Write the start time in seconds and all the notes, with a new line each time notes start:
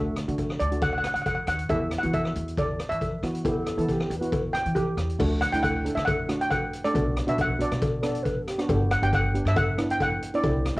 Already playing: D2 A3 D4 F#4 E5
0.16 cross-stick, closed hi-hat
0.28 D3 A3 D4 F#4, closed hi-hat
0.38 kick, closed hi-hat, cowbell
0.50 cross-stick
0.60 D2 D5, closed hi-hat
0.71 A3 D4 F#4, closed hi-hat
0.82 F#5, kick, closed hi-hat, cowbell
0.93 F#5
0.98 F#5
1.04 F#5, cross-stick, closed hi-hat
1.14 D3 F#5, closed hi-hat
1.22 F#5, kick, closed hi-hat
1.26 F#5, cowbell
1.35 F#5
1.47 D#2 F#5, cross-stick, closed hi-hat
1.59 closed hi-hat
1.69 E2 B3 E4 G4 E5, kick, closed hi-hat, cowbell
1.91 cross-stick, closed hi-hat
1.98 F#5
2.03 E3 B3 E4 F#4, closed hi-hat
2.13 E5, kick, closed hi-hat, cowbell
2.25 cross-stick
2.35 E2, closed hi-hat
2.48 closed hi-hat
2.57 D5, kick, closed hi-hat, cowbell
2.79 cross-stick, closed hi-hat
2.89 E3 E5, closed hi-hat
3.01 kick, closed hi-hat, cowbell
3.22 E3 B3 E4 F#4, cross-stick, closed hi-hat
3.35 closed hi-hat
3.45 E2 B3 E4 G4 A4, kick, closed hi-hat, cowbell
3.66 cross-stick, closed hi-hat
3.77 E3 B3 E4 A4, closed hi-hat
3.88 G4, kick, closed hi-hat, cowbell
4.00 cross-stick
4.10 E2, closed hi-hat
4.18 B3 E4 F#4 B4
4.22 closed hi-hat
4.32 kick, closed hi-hat, cowbell
4.53 G5, cross-stick, closed hi-hat
4.66 E3, closed hi-hat
4.75 G4, kick, closed hi-hat, cowbell
4.97 E2, cross-stick, closed hi-hat
5.10 closed hi-hat
5.19 D2 A3 D4 F#4, kick, crash, cowbell
5.41 F#5, cross-stick, closed hi-hat
5.52 D2 A3 D4 E4 G5, closed hi-hat
5.63 F#5, kick, closed hi-hat, cowbell
5.85 A3 D4 A4, closed hi-hat
5.95 D3 E5, cross-stick, closed hi-hat
6.05 F#5, kick, closed hi-hat, cowbell
6.29 A3 D4 F#4, cross-stick, closed hi-hat
6.41 G5, closed hi-hat
6.50 F#5, kick, closed hi-hat, cowbell
6.73 closed hi-hat
6.84 A3 D4 A4 D5, closed hi-hat
6.94 B1 B3 D4 F#4, kick, closed hi-hat, cowbell
7.17 cross-stick, closed hi-hat
7.27 B1 B3 D4 F#4 E5, closed hi-hat
7.38 F#5, kick, closed hi-hat, cowbell
7.59 B3 D4 F#4 D5, closed hi-hat
7.71 B2, cross-stick, closed hi-hat
7.81 kick, closed hi-hat, cowbell
8.02 B3 D4 A4 D5, cross-stick, closed hi-hat
8.15 closed hi-hat
8.23 B4, kick, closed hi-hat, cowbell
8.46 G4, cross-stick, closed hi-hat
8.58 B3 D4 F#4, cross-stick, closed hi-hat
8.69 G1 B3 D4 G4, kick, closed hi-hat, cowbell
8.91 F#5, cross-stick, closed hi-hat
9.02 G1 B3 D4 G4 G5, closed hi-hat
9.13 F#5, kick, closed hi-hat, cowbell
9.34 B3 D4 G4, closed hi-hat
9.45 G2 E5, cross-stick, closed hi-hat
9.56 F#5, kick, closed hi-hat, cowbell
9.78 B3 D4 E4, cross-stick, closed hi-hat
9.90 G5, closed hi-hat
10.00 F#5, kick, closed hi-hat, cowbell
10.22 closed hi-hat
10.33 B3 D4 E4 D5, closed hi-hat
10.43 C2 C4 E4 G4, kick, closed hi-hat, cowbell
10.65 cross-stick, closed hi-hat
10.76 C2